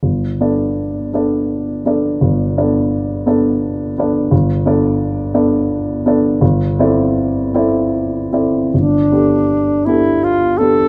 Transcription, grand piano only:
\new Staff \with { instrumentName = "Grand piano" } { \time 3/4 \key g \major \tempo 4 = 83 g,,8 <b d' a' d''>4 <b d' a' d''>4 <b d' a' d''>8 | g,,8 <b d' a' d''>4 <b d' a' d''>4 <b d' a' d''>8 | g,,8 <b d' a' d''>4 <b d' a' d''>4 <b d' a' d''>8 | g,,8 <c' e' a' d''>4 <c' e' a' d''>4 <c' e' a' d''>8 |
g,,8 <b d' g' a'>4 <b d' g' a'>4 <b d' g' a'>8 | }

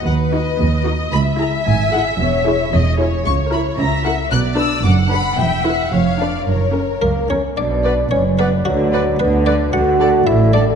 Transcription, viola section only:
\new Staff \with { instrumentName = "Viola section" } { \time 2/4 \key cis \dorian \tempo 4 = 112 r8 <dis' fis'>8 r8 <dis' fis'>8 | r8 <e' gis'>8 r8 <e' gis'>8 | r8 <e' gis'>8 r8 <e' gis'>8 | \key b \minor r8 <e' ais'>8 r8 <e' ais'>8 |
r8 <d' b'>8 r8 <d' b'>8 | r8 <e' b'>8 r8 <d' b'>8 | r8 <cis' ais'>8 r8 <cis' ais'>8 | r8 b'8 r8 b'8 |
r8 b'8 r8 b'8 | r8 a'8 r8 a'8 | }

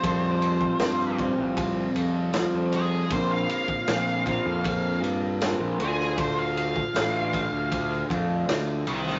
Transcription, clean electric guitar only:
\new Staff \with { instrumentName = "Clean electric guitar" } { \time 4/4 \key d \minor \tempo 4 = 78 <c f g c' f'>4. <c f g c' f'>4. <c f g c' f'>4 | <bes, d bes c' f'>4. <bes, d bes c' f'>4. <bes, d bes c' f'>8 <d a d' f'>8~ | <d a d' f'>4 <d a d' f'>4. <d a d' f'>4 r8 | }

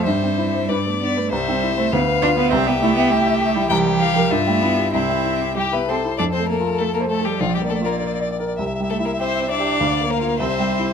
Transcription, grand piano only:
\new Staff \with { instrumentName = "Grand piano" } { \time 2/4 \key c \major \tempo 4 = 99 g,16 c'16 e'16 c''16 g,16 b16 d'16 b'16 | c,16 c'16 e'16 c''16 d,16 b16 f'16 b'16 | c,16 g16 e'16 g'16 g''16 e''16 g'16 e'16 | c,16 g16 g'16 bes'16 g,16 g16 e'16 g'16 |
c,16 g16 e'16 g'16 g''16 e''16 g'16 e'16 | \key f \major \tuplet 3/2 { f,8 a8 f'8 a'8 c''8 a'8 } | \tuplet 3/2 { bes,,8 bes8 f'8 bes'8 d''8 bes'8 } | \tuplet 3/2 { c,8 g8 e'8 g'8 c''8 g'8 } |
\tuplet 3/2 { d,8 bes8 f'8 c,8 g8 <e' g'>8 } | }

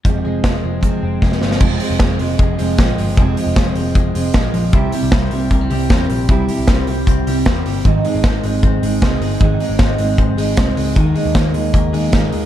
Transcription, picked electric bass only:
\new Staff \with { instrumentName = "Picked electric bass" } { \clef bass \time 4/4 \key f \minor \tempo 4 = 154 f,,8 f,,8 f,,8 f,,8. r16 f,,8 f,,8 g,,8 | f,,8 r16 f,,16 f,,8 f,,8 f,,8 f,,8 bes,,8 g,,8 | f,,8 r16 f,,16 f,,8 f,,8 f,,8 f,,8 bes,,8 bes,,8 | c,8 r16 c,16 c,8 c,8 c,8 c,8 e,8 bes,,8 |
c,8 r16 c,16 c,8 c,8 c,8 c,8 e,8 g,,8 | aes,,8 r16 aes,,16 r8 aes,,8 aes,,8 aes,,8 c,8 g,,8 | aes,,8 r16 aes,,16 aes,,8 aes,,8 aes,,8 aes,,8 c,8 des,8 | ees,8 r16 ees,16 ees,8 ees,8 ees,8 ees,8 aes,8 ees,8 | }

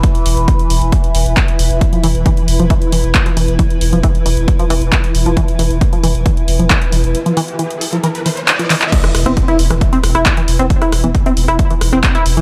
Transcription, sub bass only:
\new Staff \with { instrumentName = "Sub bass" } { \clef bass \time 4/4 \key c \major \tempo 4 = 135 r8 e,,16 e,,16 r8 e,,16 e,,16 r8 e,,16 e,,16 r8 e,,16 e,,16 | r8 e,,16 e,,16 r8 e,,16 e,,16 r8 e,,16 e,,16 r8 e,,16 e,,16 | r8 e,,16 e,,16 r8 e,,16 e,,16 r8 e,,16 e,,16 r8 e,,16 e,,16 | r8 e,,16 e,,16 r8 e,,16 e,,16 r8 e,,16 e,,16 r8 e,,16 e,,16 |
r1 | r8 e,,16 e,,16 r8 e,,16 e,,16 r8 e,,16 e,,16 r8 e,,16 e,,16 | r8 e,,16 e,,16 r8 e,,16 e,,16 r8 e,,16 e,,16 r8 e,,16 e,,16 | }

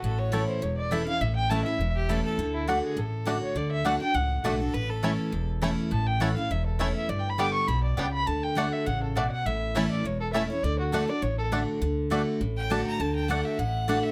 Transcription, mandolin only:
\new Staff \with { instrumentName = "Mandolin" } { \time 4/4 \key d \major \tempo 4 = 204 r4 <a e' cis'' a''>8 r4. <a e' cis'' a''>8 r8 | r4 <a e' cis'' a''>8 r4. <a e' cis'' a''>8 r8 | r4 <a fis' d'' fis''>8 r4. <a fis' d'' fis''>8 r8 | r4 <a fis' d'' fis''>8 r4. <a fis' d'' fis''>8 r8 |
r4 <a e' cis'' a''>8 r4. <a e' cis'' a''>8 r8 | r4 <a e' cis'' a''>8 r4. <a e' cis'' a''>8 r8 | r4 <b g' d'' g''>8 r4. <b g' d'' g''>8 r8 | r4 <a fis' d'' fis''>8 r4. <a fis' d'' fis''>8 r8 |
r4 <a e' cis'' a''>8 r4. <a e' cis'' a''>8 r8 | r4 <a fis' d'' fis''>8 r4. <a fis' d'' fis''>8 r8 | r4 <a fis' d'' fis''>8 r4. <a fis' d'' fis''>8 r8 | r4 <a fis' d'' fis''>8 r4. <a fis' d'' fis''>8 r8 | }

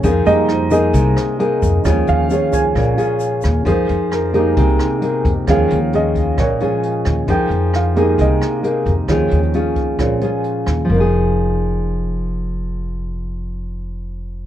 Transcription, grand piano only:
<<
  \new Staff \with { instrumentName = "Grand piano" } { \time 4/4 \key f \minor \tempo 4 = 133 r8 ees''8 c''8 ees''4. r4 | r8 f''8 des''8 aes''4. r4 | c''4 bes'4 aes'4 r4 | f''4 ees''4 des''4 r4 |
g''4 f''4 ees''4 r4 | r1 | r1 | r1 | }
  \new Staff \with { instrumentName = "Grand piano" } { \clef bass \time 4/4 \key f \minor r8 <g aes bes ees'>4. r2 | <f aes des'>4. <f aes des'>8 r2 | r4. <aes bes ees' g'>8 r2 | <f aes des'>2~ <f aes des'>8 <f aes des'>8 r4 |
r4. <aes bes ees' g'>4. r4 | <f aes des'>8 r4. <f aes des'>8 r4. | r1 | r1 | }
>>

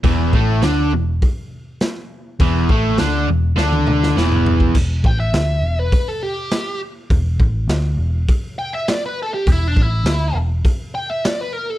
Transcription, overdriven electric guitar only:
\new Staff \with { instrumentName = "Overdriven electric guitar" } { \clef bass \time 4/4 \key e \minor \tempo 4 = 102 <e, e>8 <a, a>8 <d d'>8 e,8 r2 | <e, e>8 <a, a>8 <d d'>8 e,8 <d d'>4 <e, e>4 | r1 | r1 |
r1 | }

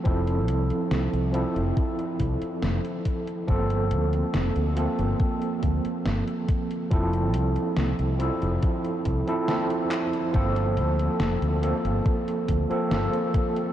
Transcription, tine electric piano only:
\new Staff \with { instrumentName = "Tine electric piano" } { \time 4/4 \key g \dorian \tempo 4 = 70 <f c' e' a'>4. <f c' e' a'>2~ <f c' e' a'>8 | <f bes c' a'>4. <f bes c' a'>2~ <f bes c' a'>8 | <f c' e' a'>4. <f c' e' a'>4~ <f c' e' a'>16 <f c' e' a'>16 <f c' e' a'>16 r8. | <f bes c' a'>4. <f bes c' a'>4~ <f bes c' a'>16 <f bes c' a'>16 <f bes c' a'>16 r8. | }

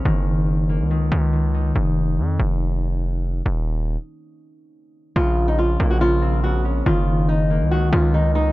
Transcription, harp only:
\new Staff \with { instrumentName = "Harp" } { \clef bass \time 4/4 \key bes \minor \tempo 4 = 141 ees4. bes8 ees8 des'8 ees8 ees'8 | r1 | r1 | des4. bes8 des8 c'8 des8 des'8 |
ees4. bes8 ees8 des'8 ees8 ees'8 | }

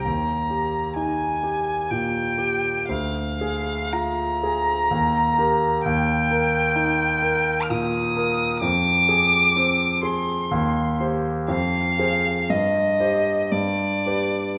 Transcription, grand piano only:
\new Staff \with { instrumentName = "Grand piano" } { \time 3/4 \key ees \major \tempo 4 = 63 ees,8 g'8 ees'8 g'8 bes,8 g'8 | d,8 aes'8 f'8 aes'8 ees,8 <g' bes'>8 | ees,8 bes'8 ees'8 bes'8 bes,8 bes'8 | f,8 aes'8 c'8 aes'8 ees,8 <g' c''>8 |
f,8 <aes' c''>8 g,8 <g' c''>8 g,8 <g' b'>8 | }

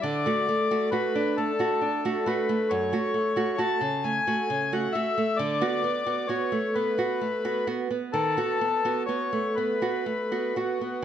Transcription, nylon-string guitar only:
\new Staff \with { instrumentName = "Nylon-string guitar" } { \time 6/8 \key d \major \tempo 4. = 44 d16 <a fis'>16 a16 <a fis'>16 <a fis'>16 d'16 a16 <a fis'>16 d'16 <a fis'>16 <a fis'>16 a16 | \key b \dorian fis,16 <a fis'>16 a16 <a fis'>16 <a fis'>16 cis16 a16 <a fis'>16 cis16 <a fis'>16 <a fis'>16 a16 | d16 <b fis'>16 b16 <b fis'>16 <b fis'>16 a16 b16 <b fis'>16 a16 <b fis'>16 <b fis'>16 b16 | dis16 <b fis'>16 b16 <b fis'>16 <b fis'>16 a16 b16 <b fis'>16 a16 <b fis'>16 <b fis'>16 b16 | }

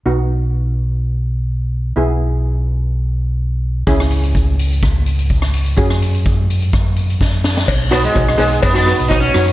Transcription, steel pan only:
\new Staff \with { instrumentName = "Steel pan" } { \time 4/4 \key b \major \tempo 4 = 126 <b dis' fis'>1 | <b e' gis'>1 | <cis' e' gis'>1 | <cis' fis' gis'>1 |
r8 <b dis' fis'>16 r16 <b dis' fis'>16 r16 <b dis' gis'>8 r16 <b dis' fis'>16 <b dis' fis'>16 r16 <b dis' fis'>16 r16 <b dis' fis'>8 | }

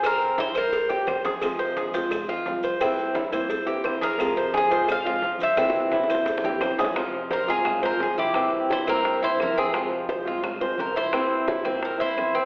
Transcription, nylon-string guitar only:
\new Staff \with { instrumentName = "Nylon-string guitar" } { \time 4/4 \key f \minor \tempo 4 = 173 r1 | <c f aes c' f'>4. <f aes c' f'>8 r8 <f aes c' f'>8 <f aes c' f'>4 | <c e bes c' e'>4. <e bes c' e'>8 r8 <e bes c' e'>8 <e bes c' e'>4 | <c f aes c' f'>4. <f aes c' f'>8 r8 <f aes c' f'>8 <f aes c' f'>4 |
<c e bes c' e'>4. <e bes c' e'>8 r8 <e bes c' e'>8 <e bes c' e'>4 | <c f aes c' f'>4. <f aes c' f'>8 r8 <f aes c' f'>8 <f aes c' f'>4 | <c e bes c' e'>4. <e bes c' e'>8 r8 <e bes c' e'>8 <e bes c' e'>4 | <c f aes c' f'>4. <f aes c' f'>8 r8 <f aes c' f'>8 <f aes c' f'>4 |
<c e bes c' e'>4. <e bes c' e'>8 r8 <e bes c' e'>8 <e bes c' e'>4 | }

